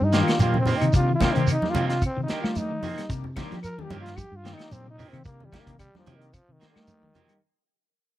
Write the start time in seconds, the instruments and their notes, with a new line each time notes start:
0.01 fingered electric bass G2, trombone D#4
0.12 transistor combo organ D#3 G3 A#3 D4, clean electric guitar D#3 A#3 C4 G4, snare, closed hi-hat, shekere
0.23 trombone F4
0.28 snare, closed hi-hat, claves
0.39 fingered electric bass A#2, clean electric guitar D#3 A#3 C4 G4, trombone F4, closed hi-hat, high conga, shekere
0.54 clean electric guitar C3, high conga
0.60 trombone C4
0.66 clean electric guitar D#3 A#3 C4 G4, open hi-hat, low conga, shekere
0.77 trombone D#4
0.81 fingered electric bass C3, clean electric guitar D#3, closed hi-hat, claves
0.93 fingered electric bass C3, clean electric guitar C3, transistor combo organ D#3 G3 A#3 D4, trombone F4, kick, closed hi-hat, high conga, shekere
1.09 clean electric guitar D#3
1.15 trombone F4
1.19 clean electric guitar C3 D#3 A#3 C4 G4, transistor combo organ D#3 G3 A#3 D4, kick, snare, closed hi-hat, high conga, claves, shekere
1.33 fingered electric bass C3, clean electric guitar D#3 A#3 C4 G4, trombone C4, closed hi-hat
1.47 closed hi-hat, claves, shekere
1.52 trombone D#4
1.62 transistor combo organ D#3 G3 A#3 D4, muted clean electric guitar stroke, snare, high conga
1.70 trombone F4
1.75 fingered electric bass C3, clean electric guitar D#3 F3 A#3 C4 G4, closed hi-hat, high conga, low conga, shekere
1.88 trombone F4, snare, closed hi-hat
2.02 kick, closed hi-hat, high conga, claves, shekere
2.06 trombone C4
2.17 fingered electric bass C3, clean electric guitar D#3
2.23 trombone D#4
2.27 transistor combo organ D#3 G3 A#3 D4, clean electric guitar D#3 A#3 C4 G4, muted fingered electric bass stroke, snare, closed hi-hat, shekere
2.41 clean electric guitar G3, fingered electric bass A3, trombone F4, snare, claves
2.55 trombone D#4, closed hi-hat, high conga, shekere
2.71 clean electric guitar D#3
2.83 clean electric guitar D#3 F3 A#3 C4, fingered electric bass F3, muted clean electric guitar stroke, open hi-hat, low conga, shekere
2.98 clean electric guitar G3, snare, closed hi-hat, claves
3.09 fingered electric bass C3, clean electric guitar C3, transistor combo organ D#3 G3 A#3 D4, kick, closed hi-hat, shekere
3.24 low conga
3.36 transistor combo organ D#3 G3 A#3 D4, clean electric guitar D#3 A#3 C4 G4, kick, snare, closed hi-hat, high conga, claves, shekere
3.51 clean electric guitar F3, fingered electric bass F3, snare, closed hi-hat, high conga
3.63 trombone A#4, closed hi-hat, claves, shekere
3.78 clean electric guitar D#3, transistor combo organ D#3 G3 A#3 D4, high conga
3.83 trombone G4
3.90 fingered electric bass G2, clean electric guitar D#3 F3 A#3 C4 G4, closed hi-hat, high conga, low conga, shekere
4.01 trombone F4
4.06 snare, closed hi-hat
4.17 clean electric guitar F3, trombone G4, kick, closed hi-hat, high conga, claves, shekere
4.32 fingered electric bass G2
4.36 trombone F4
4.44 clean electric guitar D#3 C4 G4, transistor combo organ D#3 G3 A#3 D4, snare, closed hi-hat, shekere
4.54 trombone D#4
4.58 snare, closed hi-hat, claves
4.71 fingered electric bass A#2, trombone C4, closed hi-hat, high conga, shekere
4.87 clean electric guitar C3, trombone D#4
4.98 clean electric guitar D#3 A#3 C4 G4, open hi-hat, low conga, shekere
5.09 trombone C4
5.13 fingered electric bass C3, clean electric guitar D#3, closed hi-hat, claves
5.25 fingered electric bass C3, clean electric guitar C3, transistor combo organ D#3 G3 A#3 D4, trombone A#3, kick, closed hi-hat, high conga, shekere
5.40 clean electric guitar D#3, low conga
5.45 trombone G3
5.52 clean electric guitar C3 D#3 A#3 G4, transistor combo organ D#3 G3 A#3 D4, muted clean electric guitar stroke, kick, snare, closed hi-hat, high conga, claves, shekere
5.61 trombone A#3
5.67 fingered electric bass C3, clean electric guitar D#3, kick, closed hi-hat, high conga
5.79 trombone G3, kick, closed hi-hat, claves, shekere
5.95 transistor combo organ D#3 G3 A#3 D4, trombone F3, clean electric guitar G3, snare, high conga
6.06 fingered electric bass C3, clean electric guitar D#3 F3 A#3 G4, closed hi-hat, high conga, low conga, shekere
6.16 trombone D#3
6.21 closed hi-hat
6.33 trombone F3, kick, closed hi-hat, high conga, claves, shekere
6.49 fingered electric bass C3, clean electric guitar D#3, trombone D#3
6.60 clean electric guitar D#3 A#3 C4, transistor combo organ D#3 G3 A#3 D4, muted clean electric guitar stroke, muted fingered electric bass stroke, snare, closed hi-hat, shekere
6.70 trombone D#3
6.76 clean electric guitar G3, fingered electric bass A3, snare, claves
6.87 closed hi-hat, high conga, shekere
7.03 clean electric guitar D#3, high conga
7.15 clean electric guitar D#3 F3 A#3 C4 G4, fingered electric bass F3, closed hi-hat, low conga, shekere
7.29 clean electric guitar G3, closed hi-hat, claves